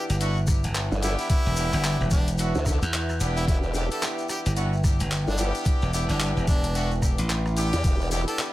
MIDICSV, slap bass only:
0, 0, Header, 1, 2, 480
1, 0, Start_track
1, 0, Key_signature, 1, "minor"
1, 0, Tempo, 545455
1, 1139, Time_signature, 4, 2, 24, 8
1, 7506, End_track
2, 0, Start_track
2, 0, Title_t, "Slap bass"
2, 0, Program_c, 0, 36
2, 85, Note_on_c, 0, 31, 96
2, 541, Note_off_c, 0, 31, 0
2, 564, Note_on_c, 0, 31, 102
2, 780, Note_off_c, 0, 31, 0
2, 1287, Note_on_c, 0, 28, 96
2, 1502, Note_off_c, 0, 28, 0
2, 1525, Note_on_c, 0, 31, 99
2, 1741, Note_off_c, 0, 31, 0
2, 1764, Note_on_c, 0, 28, 98
2, 2220, Note_off_c, 0, 28, 0
2, 2483, Note_on_c, 0, 40, 101
2, 2804, Note_off_c, 0, 40, 0
2, 2819, Note_on_c, 0, 28, 96
2, 3044, Note_off_c, 0, 28, 0
2, 3924, Note_on_c, 0, 31, 97
2, 4380, Note_off_c, 0, 31, 0
2, 4401, Note_on_c, 0, 31, 98
2, 4619, Note_off_c, 0, 31, 0
2, 5126, Note_on_c, 0, 28, 97
2, 5341, Note_off_c, 0, 28, 0
2, 5363, Note_on_c, 0, 31, 101
2, 5580, Note_off_c, 0, 31, 0
2, 5604, Note_on_c, 0, 28, 97
2, 6300, Note_off_c, 0, 28, 0
2, 6325, Note_on_c, 0, 33, 100
2, 6781, Note_off_c, 0, 33, 0
2, 7506, End_track
0, 0, End_of_file